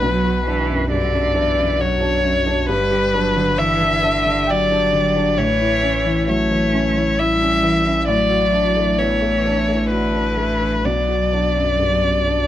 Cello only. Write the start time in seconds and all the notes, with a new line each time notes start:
0.03 F#3
0.45 E3
0.91 D3
1.35 E3
1.81 F#3
2.70 G3
3.15 F#3
3.59 E3
4.03 D3
4.49 F#3
5.38 E3
6.29 A3
7.21 G3
8.09 F#3
8.99 E3
9.90 D3
10.37 E3
10.82 F#3